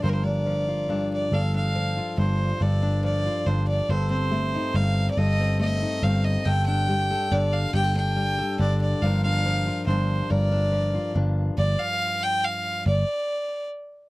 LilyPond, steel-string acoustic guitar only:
\new Staff \with { instrumentName = "Steel-string acoustic guitar" } { \time 3/4 \key d \phrygian \tempo 4 = 140 << { bes'8 d'4 f'8 d'4 | a'8 d'4 f'8 d'4 | a'8 d'4 f'8 d'4 | a'8 c'4 ees'8 c'4 |
a'8 c'4 ees'8 c'4 | a'8 d'4 a'8 d'4 | g'16 a'16 d'4 a'8 d'4 | <f d' f' bes'>8 d'4 f'8 d'4 |
bes'8 d'4 f'8 d'4 | r2. | r2. | } \\ { <g, f>4 f4 g,4 | g,4 f4 g,4 | g,4 f4 g,4 | g,4 a4 g,4 |
g,4 a4 g,4 | g,4 g4 d4 | g,4 g4 d4 | g,4 f4 g,4 |
g,4 f4 g,4~ | g,2. | r2. | } >> }